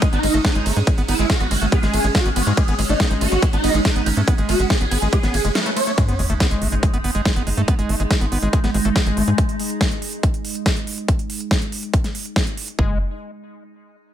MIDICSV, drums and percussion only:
0, 0, Header, 1, 2, 480
1, 0, Start_track
1, 0, Tempo, 425532
1, 984, Time_signature, 4, 2, 24, 8
1, 15949, End_track
2, 0, Start_track
2, 0, Title_t, "Drums"
2, 23, Note_on_c, 9, 36, 122
2, 23, Note_on_c, 9, 42, 82
2, 23, Note_on_c, 9, 51, 58
2, 136, Note_off_c, 9, 36, 0
2, 136, Note_off_c, 9, 42, 0
2, 136, Note_off_c, 9, 51, 0
2, 143, Note_on_c, 9, 42, 53
2, 256, Note_off_c, 9, 42, 0
2, 263, Note_on_c, 9, 46, 110
2, 263, Note_on_c, 9, 51, 83
2, 376, Note_off_c, 9, 46, 0
2, 376, Note_off_c, 9, 51, 0
2, 383, Note_on_c, 9, 42, 53
2, 496, Note_off_c, 9, 42, 0
2, 503, Note_on_c, 9, 36, 123
2, 503, Note_on_c, 9, 38, 119
2, 503, Note_on_c, 9, 42, 79
2, 503, Note_on_c, 9, 51, 56
2, 616, Note_off_c, 9, 36, 0
2, 616, Note_off_c, 9, 38, 0
2, 616, Note_off_c, 9, 42, 0
2, 616, Note_off_c, 9, 51, 0
2, 623, Note_on_c, 9, 42, 51
2, 736, Note_off_c, 9, 42, 0
2, 743, Note_on_c, 9, 46, 113
2, 743, Note_on_c, 9, 51, 81
2, 856, Note_off_c, 9, 46, 0
2, 856, Note_off_c, 9, 51, 0
2, 863, Note_on_c, 9, 42, 51
2, 976, Note_off_c, 9, 42, 0
2, 983, Note_on_c, 9, 36, 122
2, 983, Note_on_c, 9, 42, 82
2, 983, Note_on_c, 9, 51, 61
2, 1096, Note_off_c, 9, 36, 0
2, 1096, Note_off_c, 9, 42, 0
2, 1096, Note_off_c, 9, 51, 0
2, 1103, Note_on_c, 9, 42, 53
2, 1216, Note_off_c, 9, 42, 0
2, 1223, Note_on_c, 9, 46, 105
2, 1223, Note_on_c, 9, 51, 84
2, 1336, Note_off_c, 9, 46, 0
2, 1336, Note_off_c, 9, 51, 0
2, 1343, Note_on_c, 9, 42, 54
2, 1456, Note_off_c, 9, 42, 0
2, 1463, Note_on_c, 9, 36, 122
2, 1463, Note_on_c, 9, 38, 117
2, 1463, Note_on_c, 9, 42, 82
2, 1463, Note_on_c, 9, 51, 59
2, 1576, Note_off_c, 9, 36, 0
2, 1576, Note_off_c, 9, 38, 0
2, 1576, Note_off_c, 9, 42, 0
2, 1576, Note_off_c, 9, 51, 0
2, 1583, Note_on_c, 9, 42, 51
2, 1696, Note_off_c, 9, 42, 0
2, 1703, Note_on_c, 9, 46, 105
2, 1703, Note_on_c, 9, 51, 86
2, 1816, Note_off_c, 9, 46, 0
2, 1816, Note_off_c, 9, 51, 0
2, 1823, Note_on_c, 9, 42, 54
2, 1936, Note_off_c, 9, 42, 0
2, 1943, Note_on_c, 9, 36, 119
2, 1943, Note_on_c, 9, 42, 79
2, 1943, Note_on_c, 9, 51, 60
2, 2056, Note_off_c, 9, 36, 0
2, 2056, Note_off_c, 9, 42, 0
2, 2056, Note_off_c, 9, 51, 0
2, 2063, Note_on_c, 9, 38, 36
2, 2063, Note_on_c, 9, 42, 54
2, 2176, Note_off_c, 9, 38, 0
2, 2176, Note_off_c, 9, 42, 0
2, 2183, Note_on_c, 9, 46, 107
2, 2183, Note_on_c, 9, 51, 85
2, 2296, Note_off_c, 9, 46, 0
2, 2296, Note_off_c, 9, 51, 0
2, 2303, Note_on_c, 9, 42, 57
2, 2416, Note_off_c, 9, 42, 0
2, 2423, Note_on_c, 9, 36, 122
2, 2423, Note_on_c, 9, 38, 119
2, 2423, Note_on_c, 9, 42, 83
2, 2423, Note_on_c, 9, 51, 61
2, 2536, Note_off_c, 9, 36, 0
2, 2536, Note_off_c, 9, 38, 0
2, 2536, Note_off_c, 9, 42, 0
2, 2536, Note_off_c, 9, 51, 0
2, 2543, Note_on_c, 9, 42, 51
2, 2656, Note_off_c, 9, 42, 0
2, 2663, Note_on_c, 9, 46, 107
2, 2663, Note_on_c, 9, 51, 85
2, 2776, Note_off_c, 9, 46, 0
2, 2776, Note_off_c, 9, 51, 0
2, 2783, Note_on_c, 9, 42, 52
2, 2896, Note_off_c, 9, 42, 0
2, 2903, Note_on_c, 9, 36, 119
2, 2903, Note_on_c, 9, 42, 82
2, 2903, Note_on_c, 9, 51, 61
2, 3016, Note_off_c, 9, 36, 0
2, 3016, Note_off_c, 9, 42, 0
2, 3016, Note_off_c, 9, 51, 0
2, 3023, Note_on_c, 9, 42, 56
2, 3136, Note_off_c, 9, 42, 0
2, 3143, Note_on_c, 9, 46, 104
2, 3143, Note_on_c, 9, 51, 84
2, 3256, Note_off_c, 9, 46, 0
2, 3256, Note_off_c, 9, 51, 0
2, 3263, Note_on_c, 9, 42, 58
2, 3376, Note_off_c, 9, 42, 0
2, 3383, Note_on_c, 9, 36, 119
2, 3383, Note_on_c, 9, 38, 123
2, 3383, Note_on_c, 9, 42, 85
2, 3383, Note_on_c, 9, 51, 61
2, 3496, Note_off_c, 9, 36, 0
2, 3496, Note_off_c, 9, 38, 0
2, 3496, Note_off_c, 9, 42, 0
2, 3496, Note_off_c, 9, 51, 0
2, 3503, Note_on_c, 9, 42, 53
2, 3616, Note_off_c, 9, 42, 0
2, 3623, Note_on_c, 9, 46, 106
2, 3623, Note_on_c, 9, 51, 87
2, 3736, Note_off_c, 9, 46, 0
2, 3736, Note_off_c, 9, 51, 0
2, 3743, Note_on_c, 9, 42, 57
2, 3856, Note_off_c, 9, 42, 0
2, 3863, Note_on_c, 9, 36, 113
2, 3863, Note_on_c, 9, 42, 86
2, 3863, Note_on_c, 9, 51, 61
2, 3976, Note_off_c, 9, 36, 0
2, 3976, Note_off_c, 9, 42, 0
2, 3976, Note_off_c, 9, 51, 0
2, 3983, Note_on_c, 9, 42, 55
2, 4096, Note_off_c, 9, 42, 0
2, 4103, Note_on_c, 9, 46, 104
2, 4103, Note_on_c, 9, 51, 88
2, 4216, Note_off_c, 9, 46, 0
2, 4216, Note_off_c, 9, 51, 0
2, 4223, Note_on_c, 9, 42, 57
2, 4336, Note_off_c, 9, 42, 0
2, 4343, Note_on_c, 9, 36, 118
2, 4343, Note_on_c, 9, 38, 123
2, 4343, Note_on_c, 9, 42, 85
2, 4343, Note_on_c, 9, 51, 60
2, 4456, Note_off_c, 9, 36, 0
2, 4456, Note_off_c, 9, 38, 0
2, 4456, Note_off_c, 9, 42, 0
2, 4456, Note_off_c, 9, 51, 0
2, 4463, Note_on_c, 9, 42, 57
2, 4576, Note_off_c, 9, 42, 0
2, 4583, Note_on_c, 9, 46, 103
2, 4583, Note_on_c, 9, 51, 88
2, 4696, Note_off_c, 9, 46, 0
2, 4696, Note_off_c, 9, 51, 0
2, 4703, Note_on_c, 9, 42, 57
2, 4816, Note_off_c, 9, 42, 0
2, 4823, Note_on_c, 9, 36, 121
2, 4823, Note_on_c, 9, 42, 89
2, 4823, Note_on_c, 9, 51, 60
2, 4936, Note_off_c, 9, 36, 0
2, 4936, Note_off_c, 9, 42, 0
2, 4936, Note_off_c, 9, 51, 0
2, 4943, Note_on_c, 9, 42, 57
2, 5056, Note_off_c, 9, 42, 0
2, 5063, Note_on_c, 9, 46, 102
2, 5063, Note_on_c, 9, 51, 84
2, 5176, Note_off_c, 9, 46, 0
2, 5176, Note_off_c, 9, 51, 0
2, 5183, Note_on_c, 9, 42, 59
2, 5296, Note_off_c, 9, 42, 0
2, 5303, Note_on_c, 9, 36, 117
2, 5303, Note_on_c, 9, 38, 123
2, 5303, Note_on_c, 9, 42, 86
2, 5303, Note_on_c, 9, 51, 60
2, 5416, Note_off_c, 9, 36, 0
2, 5416, Note_off_c, 9, 38, 0
2, 5416, Note_off_c, 9, 42, 0
2, 5416, Note_off_c, 9, 51, 0
2, 5423, Note_on_c, 9, 42, 55
2, 5536, Note_off_c, 9, 42, 0
2, 5543, Note_on_c, 9, 46, 106
2, 5543, Note_on_c, 9, 51, 85
2, 5656, Note_off_c, 9, 46, 0
2, 5656, Note_off_c, 9, 51, 0
2, 5663, Note_on_c, 9, 42, 54
2, 5776, Note_off_c, 9, 42, 0
2, 5783, Note_on_c, 9, 36, 120
2, 5783, Note_on_c, 9, 42, 85
2, 5783, Note_on_c, 9, 51, 59
2, 5896, Note_off_c, 9, 36, 0
2, 5896, Note_off_c, 9, 42, 0
2, 5896, Note_off_c, 9, 51, 0
2, 5903, Note_on_c, 9, 38, 38
2, 5903, Note_on_c, 9, 42, 55
2, 6016, Note_off_c, 9, 38, 0
2, 6016, Note_off_c, 9, 42, 0
2, 6023, Note_on_c, 9, 46, 104
2, 6023, Note_on_c, 9, 51, 87
2, 6136, Note_off_c, 9, 46, 0
2, 6136, Note_off_c, 9, 51, 0
2, 6143, Note_on_c, 9, 42, 59
2, 6256, Note_off_c, 9, 42, 0
2, 6263, Note_on_c, 9, 38, 127
2, 6263, Note_on_c, 9, 42, 85
2, 6263, Note_on_c, 9, 51, 61
2, 6376, Note_off_c, 9, 38, 0
2, 6376, Note_off_c, 9, 42, 0
2, 6376, Note_off_c, 9, 51, 0
2, 6383, Note_on_c, 9, 42, 57
2, 6496, Note_off_c, 9, 42, 0
2, 6503, Note_on_c, 9, 46, 106
2, 6503, Note_on_c, 9, 51, 87
2, 6616, Note_off_c, 9, 46, 0
2, 6616, Note_off_c, 9, 51, 0
2, 6623, Note_on_c, 9, 42, 56
2, 6736, Note_off_c, 9, 42, 0
2, 6743, Note_on_c, 9, 36, 118
2, 6743, Note_on_c, 9, 42, 83
2, 6856, Note_off_c, 9, 36, 0
2, 6856, Note_off_c, 9, 42, 0
2, 6863, Note_on_c, 9, 42, 56
2, 6976, Note_off_c, 9, 42, 0
2, 6983, Note_on_c, 9, 46, 105
2, 7096, Note_off_c, 9, 46, 0
2, 7103, Note_on_c, 9, 42, 58
2, 7216, Note_off_c, 9, 42, 0
2, 7223, Note_on_c, 9, 36, 121
2, 7223, Note_on_c, 9, 38, 127
2, 7223, Note_on_c, 9, 42, 84
2, 7336, Note_off_c, 9, 36, 0
2, 7336, Note_off_c, 9, 38, 0
2, 7336, Note_off_c, 9, 42, 0
2, 7343, Note_on_c, 9, 42, 54
2, 7456, Note_off_c, 9, 42, 0
2, 7463, Note_on_c, 9, 46, 106
2, 7576, Note_off_c, 9, 46, 0
2, 7583, Note_on_c, 9, 42, 54
2, 7696, Note_off_c, 9, 42, 0
2, 7703, Note_on_c, 9, 36, 120
2, 7703, Note_on_c, 9, 42, 85
2, 7816, Note_off_c, 9, 36, 0
2, 7816, Note_off_c, 9, 42, 0
2, 7823, Note_on_c, 9, 42, 54
2, 7936, Note_off_c, 9, 42, 0
2, 7943, Note_on_c, 9, 46, 111
2, 8056, Note_off_c, 9, 46, 0
2, 8064, Note_on_c, 9, 42, 55
2, 8176, Note_off_c, 9, 42, 0
2, 8183, Note_on_c, 9, 36, 124
2, 8184, Note_on_c, 9, 38, 127
2, 8184, Note_on_c, 9, 42, 83
2, 8296, Note_off_c, 9, 36, 0
2, 8296, Note_off_c, 9, 38, 0
2, 8296, Note_off_c, 9, 42, 0
2, 8304, Note_on_c, 9, 42, 55
2, 8417, Note_off_c, 9, 42, 0
2, 8423, Note_on_c, 9, 46, 108
2, 8536, Note_off_c, 9, 46, 0
2, 8544, Note_on_c, 9, 42, 56
2, 8656, Note_off_c, 9, 42, 0
2, 8663, Note_on_c, 9, 36, 124
2, 8663, Note_on_c, 9, 42, 81
2, 8776, Note_off_c, 9, 36, 0
2, 8776, Note_off_c, 9, 42, 0
2, 8784, Note_on_c, 9, 42, 54
2, 8896, Note_off_c, 9, 42, 0
2, 8903, Note_on_c, 9, 46, 108
2, 9016, Note_off_c, 9, 46, 0
2, 9023, Note_on_c, 9, 42, 55
2, 9136, Note_off_c, 9, 42, 0
2, 9143, Note_on_c, 9, 36, 125
2, 9143, Note_on_c, 9, 38, 123
2, 9143, Note_on_c, 9, 42, 80
2, 9256, Note_off_c, 9, 36, 0
2, 9256, Note_off_c, 9, 38, 0
2, 9256, Note_off_c, 9, 42, 0
2, 9263, Note_on_c, 9, 42, 52
2, 9376, Note_off_c, 9, 42, 0
2, 9383, Note_on_c, 9, 46, 113
2, 9496, Note_off_c, 9, 46, 0
2, 9503, Note_on_c, 9, 42, 53
2, 9616, Note_off_c, 9, 42, 0
2, 9623, Note_on_c, 9, 36, 122
2, 9623, Note_on_c, 9, 42, 85
2, 9736, Note_off_c, 9, 36, 0
2, 9736, Note_off_c, 9, 42, 0
2, 9744, Note_on_c, 9, 38, 37
2, 9744, Note_on_c, 9, 42, 52
2, 9856, Note_off_c, 9, 38, 0
2, 9856, Note_off_c, 9, 42, 0
2, 9863, Note_on_c, 9, 46, 112
2, 9976, Note_off_c, 9, 46, 0
2, 9983, Note_on_c, 9, 42, 56
2, 10096, Note_off_c, 9, 42, 0
2, 10103, Note_on_c, 9, 36, 124
2, 10103, Note_on_c, 9, 38, 127
2, 10103, Note_on_c, 9, 42, 82
2, 10216, Note_off_c, 9, 36, 0
2, 10216, Note_off_c, 9, 38, 0
2, 10216, Note_off_c, 9, 42, 0
2, 10224, Note_on_c, 9, 42, 54
2, 10336, Note_off_c, 9, 42, 0
2, 10344, Note_on_c, 9, 46, 113
2, 10456, Note_off_c, 9, 46, 0
2, 10463, Note_on_c, 9, 42, 55
2, 10576, Note_off_c, 9, 42, 0
2, 10583, Note_on_c, 9, 36, 127
2, 10583, Note_on_c, 9, 42, 80
2, 10696, Note_off_c, 9, 36, 0
2, 10696, Note_off_c, 9, 42, 0
2, 10703, Note_on_c, 9, 42, 52
2, 10816, Note_off_c, 9, 42, 0
2, 10823, Note_on_c, 9, 46, 113
2, 10936, Note_off_c, 9, 46, 0
2, 10943, Note_on_c, 9, 42, 53
2, 11056, Note_off_c, 9, 42, 0
2, 11063, Note_on_c, 9, 36, 127
2, 11063, Note_on_c, 9, 38, 125
2, 11063, Note_on_c, 9, 42, 76
2, 11176, Note_off_c, 9, 36, 0
2, 11176, Note_off_c, 9, 38, 0
2, 11176, Note_off_c, 9, 42, 0
2, 11183, Note_on_c, 9, 42, 51
2, 11296, Note_off_c, 9, 42, 0
2, 11303, Note_on_c, 9, 46, 114
2, 11416, Note_off_c, 9, 46, 0
2, 11423, Note_on_c, 9, 42, 50
2, 11536, Note_off_c, 9, 42, 0
2, 11543, Note_on_c, 9, 36, 126
2, 11543, Note_on_c, 9, 42, 77
2, 11656, Note_off_c, 9, 36, 0
2, 11656, Note_off_c, 9, 42, 0
2, 11663, Note_on_c, 9, 42, 50
2, 11776, Note_off_c, 9, 42, 0
2, 11783, Note_on_c, 9, 46, 115
2, 11896, Note_off_c, 9, 46, 0
2, 11903, Note_on_c, 9, 42, 54
2, 12016, Note_off_c, 9, 42, 0
2, 12023, Note_on_c, 9, 36, 124
2, 12023, Note_on_c, 9, 38, 126
2, 12023, Note_on_c, 9, 42, 80
2, 12136, Note_off_c, 9, 36, 0
2, 12136, Note_off_c, 9, 38, 0
2, 12136, Note_off_c, 9, 42, 0
2, 12143, Note_on_c, 9, 42, 50
2, 12256, Note_off_c, 9, 42, 0
2, 12263, Note_on_c, 9, 46, 113
2, 12376, Note_off_c, 9, 46, 0
2, 12383, Note_on_c, 9, 42, 51
2, 12496, Note_off_c, 9, 42, 0
2, 12503, Note_on_c, 9, 36, 125
2, 12503, Note_on_c, 9, 42, 75
2, 12616, Note_off_c, 9, 36, 0
2, 12616, Note_off_c, 9, 42, 0
2, 12623, Note_on_c, 9, 42, 51
2, 12736, Note_off_c, 9, 42, 0
2, 12743, Note_on_c, 9, 46, 112
2, 12856, Note_off_c, 9, 46, 0
2, 12863, Note_on_c, 9, 42, 53
2, 12976, Note_off_c, 9, 42, 0
2, 12983, Note_on_c, 9, 36, 124
2, 12983, Note_on_c, 9, 38, 116
2, 12983, Note_on_c, 9, 42, 77
2, 13096, Note_off_c, 9, 36, 0
2, 13096, Note_off_c, 9, 38, 0
2, 13096, Note_off_c, 9, 42, 0
2, 13103, Note_on_c, 9, 42, 48
2, 13216, Note_off_c, 9, 42, 0
2, 13223, Note_on_c, 9, 46, 113
2, 13336, Note_off_c, 9, 46, 0
2, 13343, Note_on_c, 9, 42, 50
2, 13456, Note_off_c, 9, 42, 0
2, 13463, Note_on_c, 9, 36, 127
2, 13463, Note_on_c, 9, 42, 77
2, 13576, Note_off_c, 9, 36, 0
2, 13576, Note_off_c, 9, 42, 0
2, 13583, Note_on_c, 9, 38, 35
2, 13583, Note_on_c, 9, 42, 48
2, 13696, Note_off_c, 9, 38, 0
2, 13696, Note_off_c, 9, 42, 0
2, 13704, Note_on_c, 9, 46, 111
2, 13816, Note_off_c, 9, 46, 0
2, 13824, Note_on_c, 9, 42, 52
2, 13936, Note_off_c, 9, 42, 0
2, 13943, Note_on_c, 9, 36, 126
2, 13944, Note_on_c, 9, 38, 124
2, 13944, Note_on_c, 9, 42, 75
2, 14056, Note_off_c, 9, 36, 0
2, 14056, Note_off_c, 9, 38, 0
2, 14056, Note_off_c, 9, 42, 0
2, 14064, Note_on_c, 9, 42, 50
2, 14176, Note_off_c, 9, 42, 0
2, 14183, Note_on_c, 9, 46, 111
2, 14296, Note_off_c, 9, 46, 0
2, 14304, Note_on_c, 9, 42, 50
2, 14416, Note_off_c, 9, 42, 0
2, 14423, Note_on_c, 9, 36, 108
2, 14536, Note_off_c, 9, 36, 0
2, 15949, End_track
0, 0, End_of_file